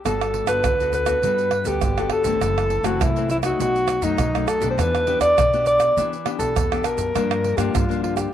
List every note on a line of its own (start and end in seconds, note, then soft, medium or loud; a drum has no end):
0.05 0.43 G1 medium
0.05 0.61 G3 medium
0.05 0.44 B3 medium
0.05 0.45 F#4 medium
0.05 0.47 A4 medium
0.05 0.45 A4 medium
0.05 pandeiro medium
0.05 tamborim medium
0.05 shaker medium
0.05 surdo soft
0.21 pandeiro soft
0.21 tamborim medium
0.21 shaker soft
0.34 pandeiro medium
0.47 0.60 G1 medium
0.47 0.73 B3 medium
0.47 0.73 F#4 medium
0.47 0.73 A4 medium
0.47 0.90 B4 medium
0.47 pandeiro medium
0.47 tamborim medium
0.47 shaker medium
0.64 1.14 D2 medium
0.64 1.20 D3 soft
0.64 pandeiro medium
0.64 tamborim medium
0.64 shaker medium
0.64 surdo medium
0.80 1.04 B3 medium
0.80 1.05 F#4 medium
0.80 1.05 A4 medium
0.80 pandeiro soft
0.80 shaker soft
0.93 1.69 B4 medium
0.93 pandeiro medium
0.93 shaker medium
1.06 1.17 B3 medium
1.06 1.17 F#4 medium
1.06 1.18 A4 medium
1.06 pandeiro medium
1.06 tamborim medium
1.06 shaker medium
1.06 surdo soft
1.22 1.60 G2 medium
1.22 1.80 G3 medium
1.22 1.51 B3 medium
1.22 1.51 F#4 soft
1.22 1.51 A4 medium
1.22 pandeiro medium
1.22 shaker medium
1.22 surdo medium
1.38 pandeiro soft
1.38 shaker soft
1.51 pandeiro medium
1.51 tamborim medium
1.65 1.78 D2 medium
1.65 1.91 B3 medium
1.65 1.92 F#4 medium
1.65 2.14 G4 medium
1.65 1.92 A4 medium
1.65 pandeiro medium
1.65 shaker medium
1.65 surdo soft
1.81 2.07 G1 medium
1.81 2.39 D3 soft
1.81 pandeiro medium
1.81 tamborim medium
1.81 shaker medium
1.81 surdo medium
1.98 2.23 B3 medium
1.98 2.23 F#4 medium
1.98 2.23 A4 medium
1.98 pandeiro soft
1.98 tamborim medium
1.98 shaker soft
1.98 surdo soft
2.10 2.87 A4 loud
2.10 pandeiro medium
2.10 tamborim medium
2.24 2.38 G1 medium
2.24 2.80 E3 medium
2.24 2.80 A3 medium
2.24 2.80 C4 medium
2.24 pandeiro medium
2.24 shaker medium
2.24 surdo soft
2.41 2.79 F#1 loud
2.41 2.98 F#2 medium
2.41 pandeiro medium
2.41 tamborim medium
2.41 shaker medium
2.41 surdo medium
2.58 pandeiro soft
2.58 tamborim medium
2.58 shaker soft
2.70 pandeiro medium
2.83 2.97 F#1 medium
2.83 3.09 E3 medium
2.83 3.10 A3 medium
2.83 3.10 C4 medium
2.83 3.03 F#4 medium
2.83 pandeiro medium
2.83 tamborim medium
2.83 shaker medium
3.00 3.50 C2 medium
3.00 3.56 F#2 medium
3.00 3.30 E4 medium
3.00 pandeiro medium
3.00 tamborim medium
3.00 shaker medium
3.00 surdo loud
3.16 3.40 E3 medium
3.16 3.41 A3 medium
3.16 3.41 C4 medium
3.16 pandeiro soft
3.16 shaker soft
3.30 3.37 E4 medium
3.30 pandeiro medium
3.30 shaker medium
3.42 3.98 F#3 medium
3.42 3.98 A3 medium
3.42 3.99 D#4 medium
3.42 3.59 F#4 medium
3.42 pandeiro medium
3.42 tamborim medium
3.42 shaker medium
3.42 surdo soft
3.60 3.97 B1 medium
3.60 4.16 B2 medium
3.60 4.05 F#4 medium
3.60 pandeiro medium
3.60 shaker medium
3.60 surdo medium
3.76 pandeiro soft
3.76 shaker soft
3.88 pandeiro medium
3.88 tamborim medium
3.88 shaker medium
4.01 4.15 F#2 medium
4.01 4.28 F#3 medium
4.01 4.28 A3 medium
4.01 4.28 D#4 medium
4.01 4.50 D#4 medium
4.01 pandeiro medium
4.01 shaker medium
4.01 surdo soft
4.18 4.44 B1 medium
4.18 4.75 F#2 medium
4.18 pandeiro medium
4.18 tamborim medium
4.18 shaker medium
4.18 surdo medium
4.35 4.59 F#3 medium
4.35 4.59 A3 medium
4.35 4.59 D#4 medium
4.35 pandeiro soft
4.35 tamborim medium
4.35 shaker soft
4.35 surdo soft
4.48 4.70 A4 medium
4.48 pandeiro medium
4.48 tamborim medium
4.48 shaker medium
4.60 4.75 B1 medium
4.60 5.05 B3 medium
4.60 5.06 D4 medium
4.60 5.06 G4 medium
4.60 pandeiro medium
4.60 shaker medium
4.60 surdo soft
4.70 4.81 C5 medium
4.78 5.15 E2 loud
4.78 5.34 E3 medium
4.78 5.21 B4 medium
4.78 pandeiro medium
4.78 tamborim medium
4.78 shaker medium
4.78 surdo medium
4.95 pandeiro soft
4.95 tamborim medium
4.95 shaker soft
5.07 5.35 B3 medium
5.07 5.35 D4 medium
5.07 5.35 G4 medium
5.07 pandeiro medium
5.20 5.33 E2 medium
5.20 5.63 D5 loud
5.20 pandeiro medium
5.20 tamborim medium
5.20 shaker medium
5.37 5.87 B1 medium
5.37 5.93 B2 medium
5.37 pandeiro medium
5.37 tamborim medium
5.37 shaker medium
5.37 surdo loud
5.53 5.92 B3 medium
5.53 5.92 D4 medium
5.53 5.93 G4 medium
5.53 pandeiro soft
5.53 shaker soft
5.66 6.10 D5 medium
5.66 pandeiro medium
5.66 shaker medium
5.80 pandeiro medium
5.80 tamborim medium
5.80 shaker medium
5.80 surdo soft
5.97 6.34 E3 medium
5.97 6.53 E3 medium
5.97 6.14 B3 medium
5.97 6.14 D4 medium
5.97 6.14 G4 medium
5.97 pandeiro medium
5.97 shaker medium
5.97 surdo medium
6.13 pandeiro soft
6.13 shaker soft
6.25 6.53 B3 medium
6.25 6.53 D4 soft
6.25 6.54 G4 medium
6.25 pandeiro medium
6.25 tamborim medium
6.39 6.52 B1 medium
6.39 6.87 A4 medium
6.39 pandeiro medium
6.39 shaker medium
6.39 surdo soft
6.56 6.81 E2 medium
6.56 7.12 B2 medium
6.56 pandeiro medium
6.56 tamborim medium
6.56 shaker medium
6.56 surdo medium
6.72 7.11 B3 medium
6.72 7.11 D4 medium
6.72 7.11 G4 medium
6.72 pandeiro soft
6.72 tamborim medium
6.72 shaker soft
6.72 surdo soft
6.84 7.58 A#4 medium
6.84 pandeiro medium
6.84 tamborim medium
6.84 shaker medium
6.84 surdo soft
6.97 7.11 F#2 medium
6.97 pandeiro medium
6.97 shaker medium
6.97 surdo soft
7.15 7.71 G2 medium
7.15 7.53 G2 loud
7.15 7.54 F3 medium
7.15 7.54 A#3 medium
7.15 7.55 D4 medium
7.15 pandeiro medium
7.15 tamborim medium
7.15 shaker medium
7.15 surdo soft
7.31 pandeiro soft
7.31 tamborim medium
7.31 shaker soft
7.44 pandeiro soft
7.57 7.70 G2 medium
7.57 7.83 F3 medium
7.57 7.83 A#3 medium
7.57 7.83 D4 medium
7.57 7.77 G4 medium
7.57 pandeiro medium
7.57 tamborim medium
7.57 shaker medium
7.74 8.24 G2 medium
7.74 8.30 D3 soft
7.74 8.02 F4 medium
7.74 pandeiro medium
7.74 tamborim medium
7.74 shaker medium
7.74 surdo loud
7.89 8.28 F3 medium
7.89 8.28 A#3 medium
7.89 8.29 D4 medium
7.89 pandeiro soft
7.89 shaker soft
8.03 8.15 F4 medium
8.03 pandeiro medium
8.16 8.31 G4 medium
8.16 pandeiro medium
8.16 tamborim medium
8.16 shaker medium
8.16 surdo soft